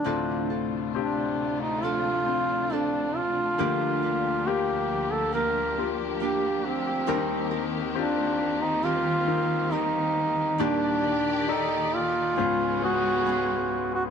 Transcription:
Already playing: D4
0.04 D2 A2 C3 D3 F3 A3 C4 D4 F4 A4
0.50 C4 D4 A4
0.95 C4 D4 G4
1.61 D#4
1.82 F3 C4 D4 F4 A4
2.26 C4 D4 F4
2.70 F3 C4 D4 A4
3.17 F4
3.58 D2 D3 F3 A#3 D4 F4 G4
4.03 A#3 D4 G4
4.47 A#3 F4 G4
5.12 A4
5.32 F3 A#3 D4 G4 A#4
5.78 A#3 F4 G4
6.20 F3 A#3 D4 G4
6.65 C4
7.07 D#2 D#3 G3 C4 D4 G4 A#4
7.14 D#4
7.51 C4 G4 A#4
7.95 C4 D4 F4 G4
8.61 D#4
8.83 G3 C4 F4 G4 A#4
9.27 C4 D#4 A#4
9.71 G3 C4 D#4 G4 A#4
10.58 D#2 A#2 D#3 G3 A#3 D4 G4 D5
11.03 A#3 G4
11.48 D#4 A4 D5
11.94 F4
12.36 C#2 G#2 G#3 B3 C#4 F4 G#4
12.82 B3 C#4 F#4 G#4
13.26 G#3 B3 G#4
13.94 F#4

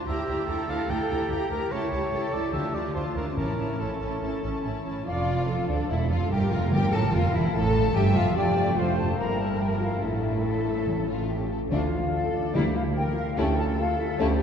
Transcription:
0.06 D2 E4 G4 E5 A#5
0.27 D2 E4 G4 A#5
0.48 D2 E4 G4 A4 A#5
0.68 D2 E4 G4 F5 A#5
0.88 D2 E4 G4 G5 A#5
1.09 D2 E4 G4 A#5
1.30 D2 E4 G4 A#5
1.50 D2 E4 G4 A#4 A#5
1.70 C#2 E4 G4 C#5 A5
1.92 C#2 E4 G4 A5
2.12 C#2 E4 G4 A4 A5
2.32 C#2 E4 G4 D5 A5
2.52 D2 D3 D4 F4 G4 E5 A5
2.74 D2 D4 F4 D5 A5
2.95 D2 D4 F4 C5 A5
3.15 D2 D4 F4 A#4 A5
3.37 A1 A2 C#4 E4 A#4 A5
3.58 A1 C#4 E4 A5
3.79 A1 C#4 E4 A4 A5
4.00 A1 C#4 E4 A5
4.22 A1 C#4 E4 A5
4.42 A1 C#4 E4 A5
4.64 A1 C#4 E4 A5
4.85 A1 C#4 E4 A5
5.06 F1 F2 F4 D5 F5
5.48 A4
5.68 D2 D4 D5
5.89 E1 E2 E4 E5
6.10 F1 F2 F4 F5
6.30 G1 G2 G4 A#4 G5
6.51 F1 F2 F4 F5
6.71 G1 G2 D3 G4 G5
6.92 A1 A2 A4 A5
7.13 F1 F2 F4 F5
7.34 E1 E2 E4 E5
7.54 A1 A2 A4 A5
7.95 G1 G2 G4 E5 G5
8.15 F1 F2 F4 F5
8.36 F1 F2 A3 D4 F4 G4 D5 G5
8.78 F4 C5 F5
8.98 A4 A5
9.18 G1 G2 A#3 E4 A#4 A#5
9.40 A4 A5
9.60 G4 G5
9.81 F4 F5
10.02 A1 A2 A3 D4 E4 A4 E5
10.44 A4
10.86 A2 C#4
11.08 F4
11.28 G4
11.51 A4
11.71 D2 D3 A3 D4 F4 F5
12.14 A4
12.34 D4 D5
12.54 D2 D3 G3 A#3 E4 G4 E5
12.75 F4 F5
12.96 G4 A#4 G5
13.16 F4 F5
13.37 D2 A3 C#4 E4 G4 A4 G5
13.57 A4 A5
13.78 F4 F5
13.99 E4 E5
14.19 D2 A3 C#4 E4 G4 A4 A5
14.39 G4

